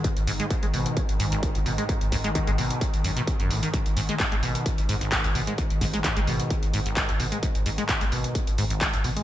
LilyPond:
<<
  \new Staff \with { instrumentName = "Synth drone" } { \clef bass \time 4/4 \key gis \minor \tempo 4 = 130 <gis, dis>1~ | <gis, dis>1~ | <gis, dis>1~ | <gis, dis>1~ |
<gis, dis>1 | }
  \new Staff \with { instrumentName = "Acid bass" } { \clef bass \time 4/4 \key gis \minor gis,16 r16 gis,16 gis16 gis,16 gis16 b,8 gis,16 r16 gis,16 gis,,8 b,16 b,16 gis16 | gis,16 r16 gis,16 gis16 gis,16 gis16 b,8 gis,16 r16 fis,16 b,16 r16 fis,16 a,16 dis16 | gis,16 r16 gis,16 gis16 gis,16 gis16 b,8 gis,16 r16 gis,16 gis,,8 b,16 b,16 gis16 | gis,16 r16 gis,16 gis16 gis,16 gis16 b,8 gis,16 r16 gis,16 gis,,8 b,16 b,16 gis16 |
gis,16 r16 gis,16 gis16 gis,16 gis16 b,8 gis,16 r16 gis,16 gis,,8 b,16 b,16 gis16 | }
  \new Staff \with { instrumentName = "Sub bass" } { \clef bass \time 4/4 \key gis \minor r16 gis,,16 gis,,16 r8 gis,,16 gis,,16 r8 gis,,16 gis,,16 r8 gis,,16 gis,,16 r16 | r16 gis,,16 gis,,16 r8 gis,,16 gis,,16 r8 gis,,16 gis,,16 r8 gis,,16 gis,,16 r16 | r16 gis,,16 gis,,16 r8 gis,,16 gis,,16 r8 gis,,16 gis,,16 r8 gis,,16 gis,,16 r16 | r16 gis,,16 gis,,16 r8 gis,,16 gis,,16 r8 gis,,16 gis,,16 r8 gis,,16 gis,,16 r16 |
r16 gis,,16 gis,,16 r8 gis,,16 gis,,16 r8 gis,,16 gis,,16 r8 gis,,16 gis,,16 r16 | }
  \new DrumStaff \with { instrumentName = "Drums" } \drummode { \time 4/4 <hh bd>16 hh16 hho16 hh16 <hh bd>16 hh16 hho16 hh16 <hh bd>16 hh16 hho16 hh16 <hh bd>16 hh16 hho16 hh16 | <hh bd>16 hh16 <hho bd>16 hh16 <hh bd>16 hh16 hho16 hh16 <hh bd>16 hh16 hho16 hh16 <hh bd>16 hh16 hho16 hh16 | <hh bd>16 hh16 hho16 hh16 <hc hh bd>16 hh16 hho16 hh16 <hh bd>16 hh16 hho16 hh16 <hc hh bd>16 hh16 hho16 hh16 | <hh bd>16 hh16 <hho bd>16 hh16 <hc hh bd>16 hh16 hho16 hh16 <hh bd>16 hh16 hho16 hh16 <hc hh bd>16 hh16 hho16 hh16 |
<hh bd>16 hh16 hho16 hh16 <hc hh bd>16 hh16 hho16 hh16 <hh bd>16 hh16 hho16 hh16 <hc hh bd>16 hh16 hho16 hh16 | }
>>